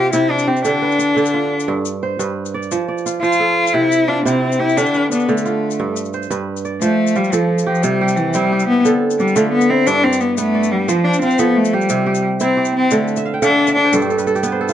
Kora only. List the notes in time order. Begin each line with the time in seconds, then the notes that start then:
Already playing: C3 F4 A4
0.13 C3 E4
0.47 G4
0.65 D3
0.82 B4
0.99 D4
1.16 D3
1.34 F4
1.68 G2
2.03 C5
2.19 G2 B4
2.54 D5
2.71 F3
2.88 D5
3.06 F4
3.23 F3
3.40 A4
3.74 C3
4.08 F4
4.25 C3 E4
4.60 G4
4.77 D3
4.95 B4
5.12 D4
5.29 D3
5.45 F4
5.80 G2
6.14 C5
6.30 G2 B4
6.65 D5
6.82 F3 C5
7.16 F4
7.33 F3 A4
7.66 G4
7.84 C3
8.01 G4
8.35 C4 E4
8.52 G4
8.85 D3 A4
9.20 D4
9.36 D3 F4
9.70 E4
9.87 G2
10.05 D5
10.38 B3
10.55 D5
10.88 F3 C5
11.22 F4
11.39 F3 A4
11.73 G4
11.90 C3
12.06 G4
12.41 C4 E4
12.57 G4
12.91 D3
13.17 E5
13.25 F5
13.34 G5
13.42 D3 F5
13.50 E5
13.59 D5
13.68 E5
13.76 D5
13.85 C5
13.94 G2 A4
14.02 G4
14.10 A4
14.18 B4
14.27 A4
14.35 G4
14.43 B3 B4
14.52 C5
14.61 A4
14.69 F4